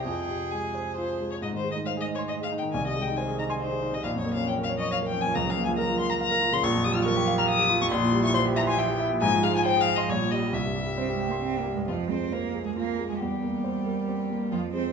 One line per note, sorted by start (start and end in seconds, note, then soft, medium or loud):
0.05 1.38 F2 medium
0.05 1.18 G#4 medium
0.05 0.53 G5 medium
0.28 0.65 C3 soft
0.51 0.88 G#3 soft
0.51 0.96 G#5 medium
0.74 1.11 C5 soft
0.97 1.33 F4 soft
0.97 1.28 C5 medium
1.20 1.42 G#3 soft
1.31 1.36 C#5 medium
1.42 2.69 G#2 medium
1.42 2.70 G#3 medium
1.42 1.48 D#5 medium
1.53 1.71 D#3 soft
1.57 1.71 C5 medium
1.64 1.82 G#3 medium
1.72 1.93 D#4 soft
1.72 1.78 D#5 medium
1.86 2.04 C5 medium
1.86 1.92 F5 medium
1.97 2.14 G#4 medium
1.97 2.06 D#5 medium
2.08 2.25 D#5 medium
2.15 2.21 C#5 medium
2.15 2.36 C6 medium
2.28 2.34 D#5 medium
2.28 2.47 D#5 medium
2.41 2.58 G#4 medium
2.41 2.49 F5 medium
2.52 2.69 D#4 medium
2.58 2.64 G5 medium
2.63 2.73 D#3 medium
2.72 4.01 C2 medium
2.72 4.00 D#3 medium
2.72 2.87 G#5 medium
2.84 3.02 C3 soft
2.84 3.03 D#5 medium
2.96 3.13 G#3 medium
3.02 3.18 G5 medium
3.07 3.24 D#4 medium
3.17 3.35 C5 medium
3.17 3.38 G#5 medium
3.28 3.46 G#4 medium
3.39 3.56 D#5 medium
3.39 3.43 A#5 medium
3.50 3.54 G#5 medium
3.50 3.67 C6 medium
3.60 3.95 C5 medium
3.60 3.78 D#5 medium
3.71 3.89 G#4 medium
3.82 4.00 D#4 medium
3.92 4.04 C3 soft
3.92 4.03 D#5 medium
4.03 5.30 A#1 medium
4.03 6.59 F3 medium
4.03 4.10 F5 medium
4.15 4.32 F2 soft
4.19 4.33 C#5 medium
4.25 4.43 A#3 medium
4.34 4.54 C#4 medium
4.34 4.48 F5 medium
4.48 4.65 C#5 medium
4.48 4.54 G5 medium
4.58 4.76 A#4 medium
4.63 4.69 F5 medium
4.69 4.87 C#5 medium
4.79 4.91 D#5 medium
4.79 4.98 C#6 medium
4.91 5.09 C#5 medium
4.91 4.98 F5 medium
5.02 5.20 A#4 medium
5.07 5.22 G5 medium
5.13 5.30 C#4 medium
5.21 5.35 F2 medium
5.21 5.37 G#5 loud
5.35 6.59 C#2 medium
5.35 5.51 A#5 medium
5.46 5.63 C#3 medium
5.46 5.64 F5 medium
5.57 5.74 A#3 medium
5.65 5.84 F4 medium
5.65 5.70 G#5 medium
5.78 5.95 A#4 medium
5.78 5.99 A#5 medium
5.89 6.06 F4 medium
5.99 6.16 F5 medium
5.99 6.10 C6 loud
6.10 6.27 A#5 medium
6.10 6.14 A#5 loud
6.21 6.37 F5 medium
6.21 6.55 A#5 loud
6.31 6.48 A#4 medium
6.41 6.59 F4 medium
6.53 6.63 C#3 medium
6.53 6.65 C6 loud
6.63 7.88 A#1 medium
6.63 7.88 F3 medium
6.63 6.86 C#6 loud
6.75 6.91 F2 medium
6.84 7.02 G3 medium
6.84 6.96 D#6 loud
6.95 7.13 F4 medium
6.95 7.05 F6 loud
7.05 7.23 A#4 medium
7.05 7.37 C#6 loud
7.16 7.33 G4 medium
7.27 7.44 F5 medium
7.38 7.55 A#5 medium
7.38 7.43 F6 loud
7.48 7.66 F5 medium
7.48 7.81 D#6 loud
7.59 7.77 G4 medium
7.69 7.87 F4 medium
7.81 7.92 F2 medium
7.81 7.86 C#6 loud
7.91 9.17 A#1 loud
7.91 9.17 E3 medium
7.91 8.23 C6 loud
8.02 8.20 A#2 medium
8.13 8.30 G3 medium
8.23 8.41 E4 medium
8.23 8.34 C#6 loud
8.34 8.52 C5 medium
8.34 8.43 C6 loud
8.46 8.63 G4 medium
8.56 8.74 E5 medium
8.56 8.61 A#5 loud
8.67 8.80 G#5 loud
8.67 8.85 C6 medium
8.78 8.95 E5 medium
8.78 9.00 G5 loud
8.88 9.06 G4 medium
9.00 9.17 E4 medium
9.11 9.22 A#2 medium
9.21 10.06 G#2 medium
9.21 10.11 F3 medium
9.21 9.45 G#5 loud
9.32 9.50 F3 medium
9.43 9.61 G#3 medium
9.43 9.54 F5 loud
9.55 9.72 F4 medium
9.55 9.65 G#5 loud
9.66 9.83 C5 medium
9.66 9.82 G5 loud
9.76 9.94 G#4 medium
9.80 9.97 F5 loud
9.87 10.04 F5 medium
9.96 10.11 D#5 medium
9.96 10.09 C6 medium
10.09 10.52 A#1 medium
10.09 10.52 G3 medium
10.09 10.33 C#5 loud
10.20 10.38 A#2 medium
10.31 10.49 G3 medium
10.31 10.55 D#5 medium
10.43 10.54 G4 medium
10.53 11.84 C2 medium
10.53 10.93 G3 medium
10.53 11.66 E5 medium
10.65 10.83 G2 soft
10.75 10.94 G3 medium
10.86 11.05 G4 soft
10.98 11.12 C4 medium
10.98 11.16 C5 medium
11.09 11.27 G4 medium
11.14 11.30 G#3 medium
11.20 11.38 G5 medium
11.28 11.42 A#3 medium
11.28 11.50 C6 medium
11.43 11.61 C4 medium
11.43 11.61 G5 medium
11.54 11.72 G4 soft
11.59 11.74 A#3 medium
11.66 11.84 G3 medium
11.74 11.88 G2 soft
11.74 11.88 G#3 medium
11.88 13.16 F2 medium
11.88 12.12 F3 medium
11.88 11.96 F4 medium
12.11 12.46 G#3 soft
12.11 12.34 C4 medium
12.11 12.35 C5 medium
12.32 12.65 A#3 medium
12.32 12.65 A#4 medium
12.32 12.67 C5 soft
12.54 12.89 G#4 soft
12.65 12.76 G#3 medium
12.65 12.76 G#4 medium
12.76 13.09 A#3 medium
12.76 13.12 F4 soft
12.76 13.09 A#4 medium
12.99 13.21 G#3 soft
13.10 13.22 G#3 medium
13.10 13.20 G#4 medium
13.20 14.48 E2 medium
13.20 14.53 G3 medium
13.20 14.49 G4 medium
13.43 13.77 A#3 soft
13.64 13.99 C5 soft
13.86 14.21 A#4 soft
14.08 14.43 C4 soft
14.30 14.52 A#3 soft
14.51 14.92 F2 soft
14.51 14.73 F3 medium
14.51 14.60 F4 medium
14.73 14.92 G#3 soft
14.73 14.92 C4 medium
14.73 14.92 C5 medium